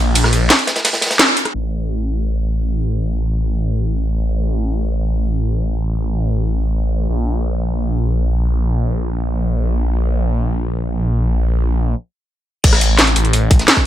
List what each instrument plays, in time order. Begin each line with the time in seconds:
Already playing: detuned saw bass A#1
0.15 closed hi-hat, ride
0.24 cross-stick, snare
0.33 closed hi-hat
0.50 snare, closed hi-hat, open hi-hat, ride
0.59 closed hi-hat
0.67 snare, closed hi-hat
0.76 snare, closed hi-hat
0.85 snare, closed hi-hat, ride
0.93 snare, closed hi-hat
1.01 snare, closed hi-hat
1.06 snare, closed hi-hat
1.11 snare, closed hi-hat
1.19 snare, closed hi-hat, ride
1.37 closed hi-hat
1.45 cross-stick, closed hi-hat
1.54 detuned saw bass A1
7.09 detuned saw bass A#1
12.64 detuned saw bass A1, kick, closed hi-hat, crash
12.73 cross-stick, snare
12.81 closed hi-hat
12.98 snare, closed hi-hat
13.07 closed hi-hat
13.16 detuned saw bass A1, closed hi-hat
13.25 closed hi-hat
13.33 closed hi-hat
13.51 kick, closed hi-hat
13.59 snare, closed hi-hat
13.68 snare, closed hi-hat
13.76 kick, cross-stick, snare